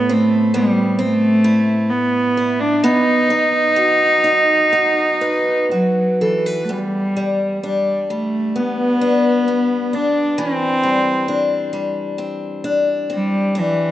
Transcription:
0, 0, Header, 1, 3, 480
1, 0, Start_track
1, 0, Key_signature, 1, "minor"
1, 0, Tempo, 884956
1, 530, Tempo, 927357
1, 1489, Time_signature, 4, 2, 24, 8
1, 1970, Tempo, 977199
1, 3410, Tempo, 934579
1, 4370, Tempo, 906344
1, 7205, End_track
2, 0, Start_track
2, 0, Title_t, "Steel-string acoustic guitar"
2, 0, Program_c, 0, 25
2, 0, Note_on_c, 0, 45, 79
2, 0, Note_on_c, 0, 59, 60
2, 0, Note_on_c, 0, 64, 61
2, 51, Note_on_c, 0, 60, 64
2, 290, Note_off_c, 0, 59, 0
2, 293, Note_on_c, 0, 59, 60
2, 528, Note_off_c, 0, 60, 0
2, 535, Note_on_c, 0, 60, 62
2, 769, Note_off_c, 0, 64, 0
2, 771, Note_on_c, 0, 64, 62
2, 1009, Note_off_c, 0, 60, 0
2, 1246, Note_off_c, 0, 64, 0
2, 1252, Note_on_c, 0, 64, 58
2, 1490, Note_off_c, 0, 45, 0
2, 1492, Note_off_c, 0, 59, 0
2, 1492, Note_on_c, 0, 59, 69
2, 1538, Note_off_c, 0, 64, 0
2, 1734, Note_on_c, 0, 63, 56
2, 1971, Note_on_c, 0, 66, 56
2, 2200, Note_off_c, 0, 63, 0
2, 2206, Note_on_c, 0, 63, 46
2, 2439, Note_off_c, 0, 66, 0
2, 2445, Note_on_c, 0, 66, 55
2, 2684, Note_on_c, 0, 71, 52
2, 2924, Note_off_c, 0, 66, 0
2, 2930, Note_on_c, 0, 66, 46
2, 3173, Note_off_c, 0, 71, 0
2, 3174, Note_on_c, 0, 69, 45
2, 3297, Note_off_c, 0, 69, 0
2, 3297, Note_on_c, 0, 71, 43
2, 3409, Note_on_c, 0, 40, 56
2, 3411, Note_off_c, 0, 59, 0
2, 3459, Note_off_c, 0, 66, 0
2, 3460, Note_off_c, 0, 63, 0
2, 3460, Note_off_c, 0, 71, 0
2, 3654, Note_on_c, 0, 55, 44
2, 3894, Note_on_c, 0, 62, 55
2, 4132, Note_off_c, 0, 55, 0
2, 4134, Note_on_c, 0, 55, 45
2, 4368, Note_on_c, 0, 59, 50
2, 4608, Note_off_c, 0, 62, 0
2, 4610, Note_on_c, 0, 62, 57
2, 4850, Note_off_c, 0, 59, 0
2, 4856, Note_on_c, 0, 59, 51
2, 5094, Note_off_c, 0, 62, 0
2, 5096, Note_on_c, 0, 62, 50
2, 5333, Note_off_c, 0, 40, 0
2, 5334, Note_on_c, 0, 52, 66
2, 5381, Note_off_c, 0, 59, 0
2, 5572, Note_off_c, 0, 55, 0
2, 5574, Note_on_c, 0, 55, 51
2, 5810, Note_off_c, 0, 62, 0
2, 5812, Note_on_c, 0, 62, 61
2, 6042, Note_off_c, 0, 55, 0
2, 6048, Note_on_c, 0, 55, 49
2, 6288, Note_on_c, 0, 60, 56
2, 6529, Note_off_c, 0, 62, 0
2, 6531, Note_on_c, 0, 62, 64
2, 6766, Note_off_c, 0, 60, 0
2, 6772, Note_on_c, 0, 60, 57
2, 7011, Note_off_c, 0, 62, 0
2, 7013, Note_on_c, 0, 62, 60
2, 7205, Note_off_c, 0, 52, 0
2, 7205, Note_off_c, 0, 55, 0
2, 7205, Note_off_c, 0, 60, 0
2, 7205, Note_off_c, 0, 62, 0
2, 7205, End_track
3, 0, Start_track
3, 0, Title_t, "Cello"
3, 0, Program_c, 1, 42
3, 0, Note_on_c, 1, 59, 90
3, 66, Note_on_c, 1, 57, 84
3, 74, Note_off_c, 1, 59, 0
3, 298, Note_on_c, 1, 55, 84
3, 306, Note_off_c, 1, 57, 0
3, 537, Note_on_c, 1, 57, 96
3, 545, Note_off_c, 1, 55, 0
3, 1005, Note_on_c, 1, 59, 86
3, 1013, Note_off_c, 1, 57, 0
3, 1368, Note_on_c, 1, 62, 89
3, 1375, Note_off_c, 1, 59, 0
3, 1487, Note_on_c, 1, 63, 99
3, 1495, Note_off_c, 1, 62, 0
3, 2926, Note_off_c, 1, 63, 0
3, 2934, Note_on_c, 1, 54, 66
3, 3179, Note_on_c, 1, 52, 58
3, 3186, Note_off_c, 1, 54, 0
3, 3384, Note_on_c, 1, 57, 52
3, 3391, Note_off_c, 1, 52, 0
3, 3413, Note_on_c, 1, 55, 72
3, 3421, Note_off_c, 1, 57, 0
3, 3895, Note_off_c, 1, 55, 0
3, 3898, Note_on_c, 1, 55, 60
3, 4118, Note_off_c, 1, 55, 0
3, 4136, Note_on_c, 1, 57, 72
3, 4385, Note_on_c, 1, 59, 89
3, 4393, Note_off_c, 1, 57, 0
3, 5104, Note_on_c, 1, 62, 80
3, 5112, Note_off_c, 1, 59, 0
3, 5341, Note_on_c, 1, 60, 90
3, 5349, Note_off_c, 1, 62, 0
3, 6051, Note_off_c, 1, 60, 0
3, 6792, Note_on_c, 1, 55, 81
3, 7039, Note_on_c, 1, 52, 80
3, 7047, Note_off_c, 1, 55, 0
3, 7205, Note_off_c, 1, 52, 0
3, 7205, End_track
0, 0, End_of_file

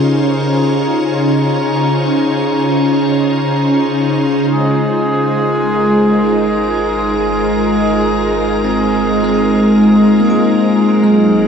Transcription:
0, 0, Header, 1, 6, 480
1, 0, Start_track
1, 0, Tempo, 500000
1, 11018, End_track
2, 0, Start_track
2, 0, Title_t, "Glass harmonica"
2, 0, Program_c, 0, 92
2, 0, Note_on_c, 0, 68, 53
2, 0, Note_on_c, 0, 82, 54
2, 4331, Note_on_c, 0, 63, 56
2, 4332, Note_on_c, 0, 75, 58
2, 4333, Note_off_c, 0, 82, 0
2, 4336, Note_off_c, 0, 68, 0
2, 11018, Note_off_c, 0, 63, 0
2, 11018, Note_off_c, 0, 75, 0
2, 11018, End_track
3, 0, Start_track
3, 0, Title_t, "Tine electric piano"
3, 0, Program_c, 1, 4
3, 0, Control_c, 1, 64, 127
3, 0, Note_on_c, 1, 67, 45
3, 4334, Control_c, 1, 64, 0
3, 4338, Note_off_c, 1, 67, 0
3, 4510, Control_c, 1, 64, 127
3, 4517, Note_on_c, 1, 65, 50
3, 6688, Note_off_c, 1, 65, 0
3, 8300, Note_on_c, 1, 60, 70
3, 8349, Note_on_c, 1, 63, 47
3, 8870, Note_on_c, 1, 56, 76
3, 8905, Note_off_c, 1, 60, 0
3, 8916, Note_on_c, 1, 60, 51
3, 8956, Note_off_c, 1, 63, 0
3, 8968, Note_on_c, 1, 63, 51
3, 9793, Note_on_c, 1, 58, 68
3, 9830, Note_off_c, 1, 63, 0
3, 9841, Note_on_c, 1, 63, 51
3, 9889, Note_on_c, 1, 65, 53
3, 10359, Control_c, 1, 64, 0
3, 10541, Control_c, 1, 64, 127
3, 10584, Note_off_c, 1, 56, 0
3, 10595, Note_on_c, 1, 56, 73
3, 10673, Note_off_c, 1, 58, 0
3, 10697, Note_off_c, 1, 60, 0
3, 10698, Note_off_c, 1, 63, 0
3, 10721, Note_off_c, 1, 65, 0
3, 11018, Note_off_c, 1, 56, 0
3, 11018, End_track
4, 0, Start_track
4, 0, Title_t, "Ambient pad"
4, 0, Program_c, 2, 92
4, 0, Note_on_c, 2, 49, 68
4, 0, Note_on_c, 2, 61, 82
4, 0, Note_on_c, 2, 63, 73
4, 0, Note_on_c, 2, 65, 74
4, 0, Note_on_c, 2, 70, 74
4, 0, Note_on_c, 2, 72, 71
4, 677, Note_off_c, 2, 70, 0
4, 4310, Note_on_c, 2, 56, 62
4, 4322, Note_off_c, 2, 49, 0
4, 4325, Note_off_c, 2, 61, 0
4, 4924, Note_on_c, 2, 70, 70
4, 10342, Note_off_c, 2, 56, 0
4, 10344, Note_on_c, 2, 54, 85
4, 10846, Note_on_c, 2, 61, 67
4, 11018, Note_off_c, 2, 54, 0
4, 11018, Note_off_c, 2, 61, 0
4, 11018, Note_off_c, 2, 63, 0
4, 11018, Note_off_c, 2, 65, 0
4, 11018, Note_off_c, 2, 70, 0
4, 11018, Note_off_c, 2, 72, 0
4, 11018, End_track
5, 0, Start_track
5, 0, Title_t, "Harmonium"
5, 0, Program_c, 3, 20
5, 4323, Note_on_c, 3, 68, 67
5, 4325, Note_on_c, 3, 56, 65
5, 11018, Note_off_c, 3, 56, 0
5, 11018, Note_off_c, 3, 68, 0
5, 11018, End_track
6, 0, Start_track
6, 0, Title_t, "Synth drone"
6, 0, Program_c, 4, 95
6, 4324, Note_on_c, 4, 32, 84
6, 10312, Note_off_c, 4, 32, 0
6, 10343, Note_on_c, 4, 30, 90
6, 11018, Note_off_c, 4, 30, 0
6, 11018, End_track
0, 0, End_of_file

